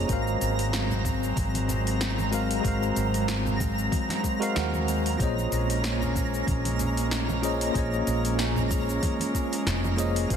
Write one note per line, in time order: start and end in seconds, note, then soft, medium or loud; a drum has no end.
0.00 5.16 G#3 medium
0.00 0.11 A#3 medium
0.00 0.11 F4 medium
0.00 0.11 G#4 medium
0.00 0.11 C5 medium
0.00 0.10 C#5 medium
0.00 0.11 D#5 medium
0.00 10.37 A#5 medium
0.05 0.34 G#1 loud
0.05 5.16 F#3 medium
0.05 2.27 G#3 medium
0.05 5.16 C4 medium
0.05 2.28 F#4 medium
0.05 2.29 A#4 medium
0.05 kick loud
0.05 open hi-hat medium
0.10 2.30 C5 medium
0.10 2.31 F5 medium
0.10 shaker soft
0.27 shaker soft
0.41 1.31 G#1 medium
0.41 open hi-hat soft
0.41 shaker medium
0.59 open hi-hat soft
0.59 high bongo soft
0.59 shaker soft
0.73 snare loud
0.73 open hi-hat medium
0.73 shaker soft
0.91 low conga medium
0.91 shaker soft
1.05 kick loud
1.05 open hi-hat soft
1.05 low conga medium
1.05 shaker medium
1.23 shaker soft
1.37 2.59 G#1 medium
1.37 kick loud
1.37 open hi-hat soft
1.37 high conga medium
1.37 shaker soft
1.55 open hi-hat soft
1.55 high conga medium
1.55 shaker soft
1.69 open hi-hat soft
1.69 low conga medium
1.69 shaker medium
1.87 open hi-hat soft
1.87 shaker soft
2.01 snare loud
2.01 open hi-hat medium
2.01 shaker soft
2.18 high bongo medium
2.18 high conga medium
2.18 shaker soft
2.30 2.59 G#3 medium
2.30 2.61 F#4 medium
2.30 2.61 A#4 medium
2.30 2.61 C5 medium
2.30 2.62 F5 medium
2.30 open hi-hat soft
2.30 shaker medium
2.51 open hi-hat soft
2.51 shaker soft
2.60 2.90 G#1 medium
2.60 4.36 G#3 medium
2.60 4.37 F#4 medium
2.60 4.38 A#4 medium
2.60 kick loud
2.65 4.39 C5 medium
2.65 4.40 F5 medium
2.65 open hi-hat medium
2.65 shaker soft
2.83 shaker soft
2.96 3.87 G#1 medium
2.96 open hi-hat soft
2.96 shaker medium
3.14 open hi-hat soft
3.14 high bongo soft
3.14 shaker soft
3.28 snare loud
3.28 open hi-hat medium
3.28 shaker soft
3.46 low conga medium
3.46 shaker soft
3.60 kick loud
3.60 open hi-hat soft
3.60 low conga medium
3.60 shaker medium
3.78 shaker soft
3.92 kick loud
3.92 open hi-hat soft
3.92 high conga medium
3.92 shaker soft
4.09 snare soft
4.09 open hi-hat soft
4.09 high conga medium
4.09 shaker soft
4.23 kick medium
4.23 open hi-hat soft
4.23 high bongo medium
4.23 shaker medium
4.40 4.51 G#3 medium
4.40 4.52 F#4 medium
4.40 4.52 A#4 medium
4.40 4.53 C5 medium
4.40 4.53 F5 loud
4.40 open hi-hat soft
4.40 shaker soft
4.54 5.14 D#2 medium
4.54 5.15 G#3 medium
4.54 5.16 F#4 medium
4.54 5.16 A#4 medium
4.54 5.17 F#5 medium
4.54 snare medium
4.54 open hi-hat soft
4.54 shaker soft
4.74 high bongo medium
4.74 high conga medium
4.74 shaker soft
4.88 open hi-hat soft
4.88 shaker medium
5.06 open hi-hat soft
5.06 shaker soft
5.16 10.37 G#3 medium
5.16 7.38 A#3 medium
5.16 7.39 F4 medium
5.16 7.39 G#4 medium
5.20 5.45 A#1 loud
5.20 10.26 A#3 medium
5.20 10.27 C#4 medium
5.20 7.40 C5 medium
5.20 7.41 C#5 medium
5.20 7.42 D#5 medium
5.20 kick loud
5.20 open hi-hat medium
5.20 shaker soft
5.38 shaker soft
5.51 6.42 A#1 medium
5.51 open hi-hat soft
5.51 shaker medium
5.70 open hi-hat soft
5.70 high bongo soft
5.70 shaker soft
5.84 snare loud
5.84 open hi-hat medium
5.84 shaker soft
6.02 low conga medium
6.02 shaker soft
6.16 kick loud
6.16 open hi-hat soft
6.16 low conga medium
6.16 shaker medium
6.34 shaker soft
6.47 7.70 A#1 medium
6.47 kick loud
6.47 open hi-hat soft
6.47 high conga medium
6.47 shaker soft
6.65 open hi-hat soft
6.65 high conga medium
6.65 shaker soft
6.79 open hi-hat soft
6.79 low conga medium
6.79 shaker medium
6.97 open hi-hat soft
6.97 shaker soft
7.11 snare medium
7.11 open hi-hat medium
7.11 shaker soft
7.29 high bongo medium
7.29 high conga medium
7.29 shaker soft
7.41 7.70 A#3 medium
7.41 7.71 F4 medium
7.41 7.72 G#4 medium
7.41 7.72 C5 medium
7.41 7.72 C#5 medium
7.41 7.73 D#5 medium
7.41 open hi-hat soft
7.41 shaker medium
7.61 open hi-hat soft
7.61 shaker soft
7.71 8.00 A#1 loud
7.71 9.93 A#3 medium
7.71 9.94 F4 medium
7.71 9.95 G#4 medium
7.71 kick loud
7.75 9.95 C5 medium
7.75 9.96 C#5 medium
7.75 9.97 D#5 medium
7.75 open hi-hat medium
7.75 shaker soft
7.93 shaker soft
8.07 8.97 A#1 medium
8.07 open hi-hat soft
8.07 shaker medium
8.25 open hi-hat soft
8.25 shaker soft
8.39 snare loud
8.39 open hi-hat medium
8.39 shaker soft
8.56 low conga medium
8.56 shaker soft
8.71 kick loud
8.71 open hi-hat soft
8.71 low conga medium
8.71 shaker medium
8.89 shaker soft
9.03 kick loud
9.03 open hi-hat medium
9.03 high conga medium
9.03 shaker soft
9.20 open hi-hat soft
9.20 high conga medium
9.20 shaker soft
9.35 kick medium
9.35 open hi-hat soft
9.35 high bongo medium
9.35 shaker medium
9.53 open hi-hat soft
9.53 shaker soft
9.66 10.25 F1 medium
9.66 snare medium
9.66 open hi-hat medium
9.66 shaker soft
9.84 high bongo medium
9.84 high conga medium
9.84 shaker soft
9.96 10.26 A#3 medium
9.96 10.26 F4 medium
9.96 10.27 G#4 medium
9.96 10.27 C5 medium
9.96 10.27 C#5 medium
9.96 10.28 D#5 medium
9.96 open hi-hat soft
9.96 shaker medium
10.16 open hi-hat medium
10.16 shaker soft
10.26 10.37 G#1 loud
10.26 10.37 G#3 medium
10.26 10.37 F#4 medium
10.26 10.37 A#4 medium
10.30 10.37 F#3 medium
10.30 10.37 C4 medium
10.30 10.37 C5 medium
10.30 kick loud
10.30 open hi-hat medium
10.30 shaker soft